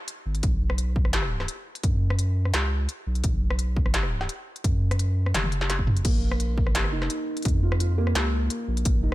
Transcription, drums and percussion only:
0.08 closed hi-hat medium
0.35 closed hi-hat soft
0.43 kick loud
0.43 closed hi-hat medium
0.70 cross-stick medium
0.78 closed hi-hat medium
0.96 kick loud
1.05 cross-stick medium
1.13 snare loud
1.13 closed hi-hat medium
1.22 cross-stick soft
1.40 cross-stick medium
1.40 snare soft
1.48 closed hi-hat medium
1.75 closed hi-hat soft
1.83 kick loud
1.83 closed hi-hat medium
2.10 cross-stick medium
2.19 closed hi-hat medium
2.45 cross-stick medium
2.54 snare loud
2.54 closed hi-hat medium
2.89 closed hi-hat medium
3.15 closed hi-hat soft
3.24 kick loud
3.24 closed hi-hat medium
3.50 cross-stick medium
3.59 closed hi-hat medium
3.76 kick medium
3.86 cross-stick medium
3.94 snare loud
3.94 closed hi-hat medium
4.03 cross-stick medium
4.21 cross-stick medium
4.21 snare soft
4.29 closed hi-hat medium
4.56 closed hi-hat soft
4.64 kick loud
4.64 closed hi-hat medium
4.91 cross-stick medium
4.91 closed hi-hat soft
4.99 closed hi-hat medium
5.26 cross-stick medium
5.34 snare loud
5.34 closed hi-hat medium
5.34 high tom medium
5.44 high tom medium
5.52 closed hi-hat soft
5.61 snare medium
5.70 snare medium
5.70 closed hi-hat medium
5.79 kick medium
5.87 mid tom loud
5.97 closed hi-hat soft
6.05 kick loud
6.05 closed hi-hat medium
6.05 crash medium
6.32 cross-stick medium
6.40 closed hi-hat medium
6.58 kick loud
6.67 cross-stick medium
6.75 snare loud
6.75 closed hi-hat medium
6.84 cross-stick medium
7.02 cross-stick medium
7.02 snare soft
7.10 closed hi-hat medium
7.37 closed hi-hat soft
7.42 closed hi-hat soft
7.45 kick loud
7.45 closed hi-hat medium
7.48 closed hi-hat soft
7.72 cross-stick medium
7.80 closed hi-hat medium
8.07 cross-stick medium
8.15 snare loud
8.15 closed hi-hat medium
8.50 closed hi-hat medium
8.77 closed hi-hat soft
8.85 kick loud
8.85 closed hi-hat medium

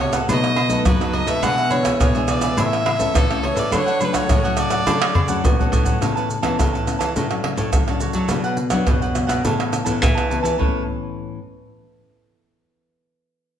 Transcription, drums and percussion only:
0.13 pandeiro medium
0.13 tamborim medium
0.13 maracas medium
0.13 surdo soft
0.29 pandeiro medium
0.29 low agogo medium
0.29 maracas medium
0.29 surdo medium
0.44 pandeiro soft
0.44 tamborim medium
0.44 maracas soft
0.56 pandeiro medium
0.56 tamborim medium
0.56 low agogo medium
0.70 pandeiro medium
0.70 maracas medium
0.70 surdo soft
0.85 pandeiro medium
0.85 tamborim medium
0.85 high agogo loud
0.85 maracas loud
0.85 surdo loud
1.01 pandeiro soft
1.01 tamborim medium
1.01 maracas soft
1.01 surdo soft
1.13 pandeiro medium
1.13 high agogo medium
1.27 pandeiro medium
1.27 maracas medium
1.27 surdo soft
1.43 pandeiro medium
1.43 tamborim medium
1.43 low agogo medium
1.43 maracas medium
1.43 surdo medium
1.58 pandeiro soft
1.58 maracas soft
1.71 pandeiro medium
1.71 low agogo medium
1.71 maracas medium
1.85 pandeiro medium
1.85 tamborim medium
1.85 maracas medium
1.85 surdo soft
2.01 pandeiro medium
2.01 tamborim medium
2.01 high agogo medium
2.01 maracas medium
2.01 surdo loud
2.15 pandeiro soft
2.15 high agogo medium
2.15 maracas soft
2.28 pandeiro medium
2.28 tamborim medium
2.28 high agogo medium
2.28 maracas medium
2.41 pandeiro medium
2.41 tamborim medium
2.41 maracas medium
2.41 surdo soft
2.58 pandeiro medium
2.58 low agogo medium
2.58 maracas medium
2.58 surdo medium
2.73 pandeiro soft
2.73 tamborim medium
2.73 maracas soft
2.86 pandeiro medium
2.86 tamborim medium
2.86 low agogo medium
3.00 pandeiro medium
3.00 maracas medium
3.00 surdo soft
3.15 pandeiro medium
3.15 tamborim loud
3.15 high agogo medium
3.15 maracas loud
3.15 surdo loud
3.31 pandeiro soft
3.31 tamborim medium
3.31 maracas soft
3.31 surdo soft
3.43 pandeiro medium
3.43 high agogo medium
3.57 pandeiro medium
3.57 maracas medium
3.57 surdo soft
3.72 pandeiro medium
3.72 tamborim medium
3.72 low agogo medium
3.72 maracas medium
3.72 surdo medium
3.88 pandeiro soft
3.88 maracas soft
4.01 pandeiro medium
4.01 low agogo medium
4.01 maracas medium
4.14 pandeiro medium
4.14 tamborim medium
4.14 maracas medium
4.14 surdo soft
4.29 pandeiro medium
4.29 tamborim medium
4.29 high agogo medium
4.29 maracas medium
4.29 surdo loud
4.45 pandeiro soft
4.45 high agogo medium
4.45 maracas soft
4.57 pandeiro medium
4.57 tamborim medium
4.57 high agogo medium
4.57 maracas medium
4.70 pandeiro medium
4.70 tamborim medium
4.70 maracas medium
4.70 surdo soft
4.87 pandeiro medium
4.87 tamborim medium
4.87 low agogo medium
4.87 maracas medium
4.87 surdo medium
5.02 pandeiro soft
5.02 tamborim loud
5.02 maracas soft
5.15 surdo medium
5.15 pandeiro medium
5.15 low agogo medium
5.28 pandeiro medium
5.28 maracas medium
5.28 surdo soft
5.45 pandeiro medium
5.45 high agogo loud
5.45 maracas medium
5.45 surdo loud
5.60 pandeiro soft
5.60 maracas soft
5.60 surdo loud
5.73 pandeiro medium
5.73 high agogo medium
5.73 maracas medium
5.73 surdo medium
5.86 pandeiro medium
5.86 maracas loud
5.86 surdo loud
6.02 pandeiro medium
6.02 tamborim medium
6.02 maracas medium
6.02 surdo medium
6.17 pandeiro soft
6.17 maracas soft
6.30 pandeiro soft
6.30 maracas medium
6.43 pandeiro medium
6.43 tamborim medium
6.43 maracas medium
6.43 surdo soft
6.59 pandeiro medium
6.59 tamborim medium
6.59 maracas medium
6.59 surdo medium
6.75 pandeiro soft
6.75 maracas soft
6.87 pandeiro soft
6.87 tamborim medium
6.87 maracas medium
7.01 pandeiro medium
7.01 tamborim medium
7.01 maracas medium
7.01 surdo soft
7.16 pandeiro medium
7.16 maracas medium
7.16 surdo medium
7.31 pandeiro soft
7.31 tamborim medium
7.31 maracas soft
7.44 pandeiro medium
7.44 tamborim medium
7.57 pandeiro medium
7.57 maracas medium
7.57 surdo soft
7.73 pandeiro medium
7.73 tamborim medium
7.73 maracas medium
7.73 surdo loud
7.88 pandeiro soft
7.88 tamborim medium
7.88 maracas soft
7.88 surdo soft
8.00 pandeiro medium
8.00 maracas medium
8.13 pandeiro medium
8.13 maracas medium
8.13 surdo soft
8.29 pandeiro medium
8.29 tamborim medium
8.29 maracas medium
8.29 surdo medium
8.44 pandeiro soft
8.44 maracas soft
8.57 pandeiro medium
8.57 maracas medium
8.70 pandeiro medium
8.70 tamborim medium
8.70 maracas medium
8.70 surdo soft
8.87 pandeiro medium
8.87 tamborim medium
8.87 maracas medium
8.87 surdo loud
9.02 pandeiro soft
9.02 maracas soft
9.15 pandeiro medium
9.15 tamborim medium
9.15 maracas medium
9.29 pandeiro medium
9.29 tamborim medium
9.29 maracas medium
9.29 surdo soft
9.45 pandeiro medium
9.45 maracas medium
9.45 surdo medium
9.60 pandeiro soft
9.60 tamborim medium
9.60 maracas soft
9.73 pandeiro medium
9.73 tamborim medium
9.73 maracas medium
9.86 pandeiro medium
9.86 maracas medium
9.86 surdo soft
10.03 pandeiro medium
10.03 tamborim medium
10.03 maracas medium
10.03 surdo loud
10.18 pandeiro soft
10.18 tamborim medium
10.18 maracas soft
10.18 surdo soft
10.31 pandeiro medium
10.31 maracas medium
10.45 pandeiro medium
10.45 maracas medium
10.45 surdo soft
10.61 surdo loud

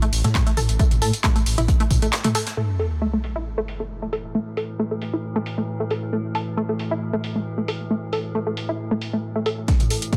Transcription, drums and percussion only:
0.02 closed hi-hat medium
0.13 closed hi-hat medium
0.13 open hi-hat loud
0.13 tambourine medium
0.24 snare medium
0.24 closed hi-hat medium
0.24 mid tom medium
0.24 tambourine soft
0.35 kick loud
0.35 snare loud
0.35 clap loud
0.35 closed hi-hat loud
0.35 closed hi-hat medium
0.35 tambourine soft
0.46 snare soft
0.46 closed hi-hat medium
0.57 closed hi-hat medium
0.57 mid tom medium
0.57 open hi-hat loud
0.57 tambourine medium
0.69 closed hi-hat medium
0.69 closed hi-hat soft
0.69 tambourine soft
0.79 kick loud
0.79 closed hi-hat medium
0.79 tambourine soft
0.91 closed hi-hat medium
0.91 mid tom medium
0.91 tambourine soft
1.02 closed hi-hat medium
1.02 open hi-hat loud
1.02 tambourine medium
1.13 closed hi-hat medium
1.13 tambourine soft
1.24 kick loud
1.24 snare loud
1.24 clap loud
1.24 closed hi-hat medium
1.24 mid tom medium
1.24 tambourine soft
1.36 closed hi-hat medium
1.36 tambourine soft
1.46 open hi-hat loud
1.46 open hi-hat medium
1.46 tambourine medium
1.58 closed hi-hat medium
1.58 mid tom medium
1.58 tambourine soft
1.68 kick loud
1.68 closed hi-hat medium
1.68 tambourine soft
1.80 closed hi-hat medium
1.80 closed hi-hat soft
1.91 kick medium
1.91 closed hi-hat medium
1.91 mid tom medium
1.91 open hi-hat loud
1.91 tambourine medium
2.02 closed hi-hat medium
2.02 tambourine soft
2.13 snare loud
2.13 clap loud
2.13 closed hi-hat medium
2.13 tambourine soft
2.24 clap soft
2.24 closed hi-hat medium
2.24 closed hi-hat soft
2.24 mid tom medium
2.24 tambourine soft
2.34 snare loud
2.34 closed hi-hat medium
2.34 open hi-hat loud
2.34 tambourine medium
2.47 snare loud
2.47 closed hi-hat medium
2.47 tambourine soft
2.79 open hi-hat loud
3.24 open hi-hat loud
3.68 open hi-hat loud
4.13 open hi-hat loud
4.57 open hi-hat loud
5.02 open hi-hat loud
5.46 open hi-hat loud
5.90 open hi-hat loud
6.35 open hi-hat loud
6.79 open hi-hat loud
7.24 open hi-hat loud
7.68 open hi-hat loud
8.13 open hi-hat loud
8.57 open hi-hat loud
9.01 open hi-hat loud
9.46 open hi-hat loud
9.68 kick loud
9.68 snare soft
9.68 closed hi-hat medium
9.68 tambourine soft
9.80 closed hi-hat medium
9.80 mid tom medium
9.80 tambourine soft
9.90 open hi-hat loud
9.90 tambourine medium
10.02 closed hi-hat medium
10.02 tambourine soft
10.13 kick loud
10.13 snare soft
10.13 closed hi-hat medium
10.13 mid tom medium
10.13 tambourine soft

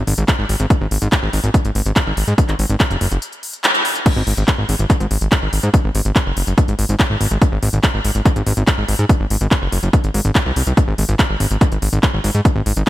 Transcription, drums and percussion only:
0.07 open hi-hat loud
0.18 closed hi-hat medium
0.28 kick loud
0.28 clap loud
0.28 closed hi-hat medium
0.49 open hi-hat loud
0.60 closed hi-hat medium
0.70 kick loud
0.70 closed hi-hat medium
0.91 open hi-hat loud
1.02 closed hi-hat medium
1.12 kick loud
1.12 clap loud
1.12 closed hi-hat medium
1.33 open hi-hat medium
1.44 closed hi-hat medium
1.54 kick loud
1.54 closed hi-hat medium
1.65 closed hi-hat soft
1.75 open hi-hat medium
1.86 closed hi-hat medium
1.96 kick loud
1.96 clap loud
1.96 closed hi-hat medium
2.17 open hi-hat loud
2.28 closed hi-hat soft
2.38 kick loud
2.38 closed hi-hat medium
2.49 clap soft
2.49 closed hi-hat soft
2.59 open hi-hat loud
2.70 closed hi-hat medium
2.80 kick loud
2.80 clap loud
2.80 closed hi-hat medium
2.91 closed hi-hat soft
3.01 open hi-hat loud
3.12 closed hi-hat medium
3.22 closed hi-hat medium
3.33 closed hi-hat soft
3.43 open hi-hat loud
3.54 closed hi-hat medium
3.64 clap loud
3.64 closed hi-hat medium
3.74 closed hi-hat soft
3.85 open hi-hat loud
3.95 closed hi-hat medium
4.06 kick loud
4.06 closed hi-hat medium
4.06 crash loud
4.27 open hi-hat medium
4.37 closed hi-hat medium
4.48 kick loud
4.48 clap loud
4.48 closed hi-hat medium
4.69 open hi-hat loud
4.79 closed hi-hat medium
4.90 kick loud
4.90 clap soft
4.90 closed hi-hat medium
5.00 closed hi-hat soft
5.11 open hi-hat loud
5.21 closed hi-hat medium
5.32 kick loud
5.32 clap loud
5.32 closed hi-hat medium
5.53 open hi-hat loud
5.63 closed hi-hat medium
5.74 kick loud
5.74 closed hi-hat medium
5.95 open hi-hat loud
6.05 closed hi-hat medium
6.16 kick loud
6.16 clap loud
6.16 closed hi-hat medium
6.37 open hi-hat loud
6.47 closed hi-hat medium
6.58 kick loud
6.58 closed hi-hat medium
6.68 closed hi-hat soft
6.79 open hi-hat loud
6.89 closed hi-hat medium
7.00 kick loud
7.00 clap loud
7.00 closed hi-hat medium
7.21 open hi-hat loud
7.31 closed hi-hat medium
7.42 kick loud
7.42 closed hi-hat medium
7.63 open hi-hat loud
7.73 closed hi-hat medium
7.84 kick loud
7.84 clap loud
7.84 closed hi-hat medium
8.05 open hi-hat loud
8.15 closed hi-hat medium
8.26 kick loud
8.26 clap soft
8.26 closed hi-hat medium
8.36 closed hi-hat soft
8.47 open hi-hat loud
8.57 closed hi-hat medium
8.67 kick loud
8.67 clap loud
8.67 closed hi-hat medium
8.88 open hi-hat loud
8.99 closed hi-hat soft
9.09 kick loud
9.09 closed hi-hat medium
9.30 open hi-hat loud
9.41 closed hi-hat medium
9.51 kick loud
9.51 clap loud
9.51 closed hi-hat medium
9.72 open hi-hat loud
9.83 closed hi-hat soft
9.93 kick loud
9.93 closed hi-hat medium
10.04 closed hi-hat soft
10.14 open hi-hat loud
10.25 closed hi-hat soft
10.35 kick loud
10.35 clap loud
10.35 closed hi-hat medium
10.56 open hi-hat loud
10.67 closed hi-hat medium
10.77 kick loud
10.77 closed hi-hat medium
10.98 open hi-hat loud
11.09 closed hi-hat medium
11.19 kick loud
11.19 clap loud
11.19 closed hi-hat medium
11.40 open hi-hat loud
11.51 closed hi-hat medium
11.61 kick loud
11.61 clap soft
11.61 closed hi-hat medium
11.72 closed hi-hat soft
11.82 open hi-hat loud
11.93 closed hi-hat medium
12.03 kick loud
12.03 clap loud
12.03 closed hi-hat medium
12.24 open hi-hat loud
12.35 closed hi-hat soft
12.45 kick loud
12.45 closed hi-hat medium
12.66 open hi-hat medium
12.77 closed hi-hat medium

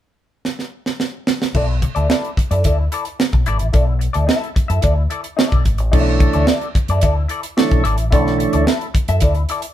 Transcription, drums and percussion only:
0.45 snare medium
0.59 snare soft
0.86 snare medium
1.00 snare medium
1.27 snare loud
1.42 snare medium
1.55 kick medium
1.55 crash medium
1.82 kick medium
1.82 closed hi-hat medium
1.96 closed hi-hat soft
2.10 snare loud
2.24 closed hi-hat soft
2.37 kick medium
2.37 closed hi-hat medium
2.51 closed hi-hat medium
2.64 kick medium
2.64 closed hi-hat medium
2.92 closed hi-hat medium
3.05 closed hi-hat medium
3.20 snare medium
3.33 kick medium
3.33 closed hi-hat soft
3.46 closed hi-hat medium
3.59 closed hi-hat medium
3.73 kick loud
3.73 closed hi-hat medium
4.01 closed hi-hat medium
4.14 closed hi-hat medium
4.29 snare medium
4.44 closed hi-hat soft
4.56 kick medium
4.56 closed hi-hat medium
4.70 closed hi-hat medium
4.82 kick medium
4.82 closed hi-hat medium
5.10 closed hi-hat medium
5.24 closed hi-hat medium
5.39 snare loud
5.52 kick medium
5.52 closed hi-hat soft
5.65 kick medium
5.65 closed hi-hat medium
5.78 closed hi-hat soft
5.93 kick loud
5.93 crash medium
6.20 kick loud
6.20 closed hi-hat medium
6.33 closed hi-hat medium
6.47 snare loud
6.61 closed hi-hat soft
6.75 kick loud
6.75 closed hi-hat medium
6.88 closed hi-hat medium
7.01 kick medium
7.01 closed hi-hat medium
7.29 closed hi-hat medium
7.43 closed hi-hat medium
7.58 snare loud
7.71 kick medium
7.71 closed hi-hat soft
7.85 closed hi-hat medium
7.98 closed hi-hat medium
8.12 kick loud
8.12 closed hi-hat medium
8.27 snare soft
8.40 closed hi-hat medium
8.53 closed hi-hat medium
8.67 snare medium
8.81 closed hi-hat soft
8.95 kick medium
8.95 closed hi-hat medium
9.08 closed hi-hat medium
9.20 kick medium
9.20 closed hi-hat medium
9.35 closed hi-hat soft
9.49 closed hi-hat medium
9.62 closed hi-hat medium

